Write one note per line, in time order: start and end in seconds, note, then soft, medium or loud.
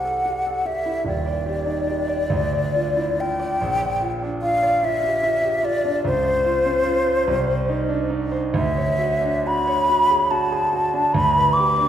0.00 1.03 C2 medium
0.00 0.86 E4 soft
0.00 0.25 G4 medium
0.00 1.10 C5 medium
0.00 0.68 F#5 medium
0.05 0.26 A4 soft
0.25 0.59 G4 medium
0.47 0.67 A4 soft
0.66 0.98 G4 medium
0.66 1.07 E5 medium
0.86 1.07 E4 soft
1.05 2.28 D#1 medium
1.05 2.29 D#2 medium
1.05 3.22 D5 loud
1.26 1.60 D5 medium
1.46 1.80 G4 medium
1.66 2.01 D#4 medium
1.87 2.23 G4 medium
2.08 2.31 D5 medium
2.30 3.57 D2 medium
2.53 2.90 D5 medium
2.75 3.11 F4 medium
2.97 3.32 E4 medium
3.19 3.54 F4 medium
3.19 4.11 G5 loud
3.40 3.62 D5 medium
3.61 6.02 A#1 medium
3.81 4.15 D5 medium
4.01 4.35 F4 medium
4.22 4.56 D4 medium
4.42 4.76 F4 medium
4.42 4.86 F5 loud
4.63 4.96 D5 medium
4.83 5.16 F4 medium
4.83 5.66 E5 loud
5.04 5.25 G4 medium
5.23 5.57 F4 medium
5.42 5.64 G4 medium
5.63 5.97 F4 medium
5.63 6.05 D5 loud
5.85 6.06 D4 medium
6.05 7.24 C#2 medium
6.05 8.08 C5 loud
6.25 6.58 C5 medium
6.45 6.78 F4 medium
6.65 6.99 C#4 medium
6.86 7.19 F4 medium
7.06 7.27 C5 medium
7.27 8.52 C2 medium
7.47 7.82 C5 medium
7.69 8.03 D#4 medium
7.89 8.24 D4 medium
8.10 8.46 D#4 medium
8.32 8.55 C5 medium
8.54 11.09 D2 medium
8.54 9.48 E5 loud
8.77 9.14 C#5 medium
8.99 9.36 F#4 medium
9.22 9.58 D4 medium
9.46 9.81 F#4 medium
9.46 10.32 B5 loud
9.67 10.01 C#5 medium
9.89 10.23 F#4 medium
10.10 10.31 G#4 medium
10.31 10.64 F#4 medium
10.31 11.14 A5 medium
10.52 10.72 G#4 medium
10.73 11.06 F#4 medium
10.93 11.14 D4 medium
11.13 11.88 D2 medium
11.13 11.55 B5 loud
11.37 11.69 B4 medium
11.53 11.88 D6 loud
11.57 11.88 G4 medium
11.77 11.88 D4 medium